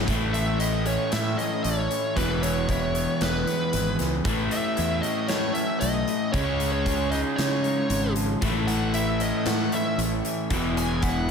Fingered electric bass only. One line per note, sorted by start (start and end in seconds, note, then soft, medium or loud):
0.08 0.96 A1 loud
1.12 1.34 A2 medium
1.65 1.87 A1 medium
2.17 3.05 E1 medium
3.21 3.43 E1 medium
3.73 3.95 G#1 loud
4.00 4.22 C#2 medium
4.25 4.47 A1 loud
4.78 5.00 E2 loud
5.82 6.04 B1 loud
6.34 7.22 C#2 loud
7.38 7.82 C#3 medium
7.90 8.34 G#1 loud
8.42 9.31 A1 medium
9.46 9.68 A2 medium
9.98 10.20 A1 medium
10.50 11.31 E1 loud